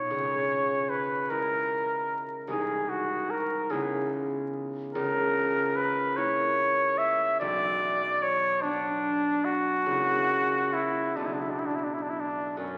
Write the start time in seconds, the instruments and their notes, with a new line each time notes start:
Already playing: harp B2 B3 D#4, trumpet C#5
0.10 harp C#2
0.90 trumpet B4
1.30 harp G#3 E4, trumpet A#4
2.48 harp C2 G#3, trumpet G#4
2.52 harp D#4
2.90 trumpet F#4
3.30 trumpet A#4
3.70 harp C#2 B3 E4, trumpet G#4
4.95 harp C#2, trumpet A#4
5.76 trumpet B4
6.17 harp A#3 E4, trumpet C#5
6.98 trumpet E5
7.41 harp B1, trumpet D5
8.23 trumpet C#5
8.62 harp B3 D4, trumpet D4
9.45 trumpet F#4
9.86 harp C#2 A#3
9.91 harp E4
10.74 trumpet E4
11.16 harp B1 B3 D4, trumpet D4
11.26 trumpet E4
11.34 trumpet D4
11.41 trumpet E4
11.51 trumpet D4
11.59 trumpet E4
11.66 trumpet D4
11.76 trumpet E4
11.84 trumpet D4
11.94 trumpet E4
12.03 trumpet D4
12.10 trumpet E4
12.20 trumpet D4
12.57 harp F#2 B3, trumpet C#4